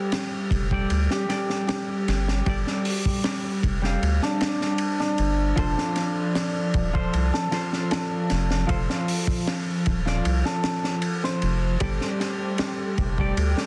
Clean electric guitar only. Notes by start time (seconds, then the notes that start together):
Already playing: G3 G4 A4 D5
0.72 G3 G4 A4 D5
1.29 G3 G4 A4 D5
2.46 G3 G4 A4 D5
3.82 G3 G4 A4 F5
5.56 F3 F4 A4 C5
6.93 F3 F4 A4 C5
7.51 F3 F4 A4 C5
8.67 F3 F4 A4 C5
10.06 F3 F4 A4 D5
11.81 G3 G4 A4 D5
13.19 G3 G4 A4 D5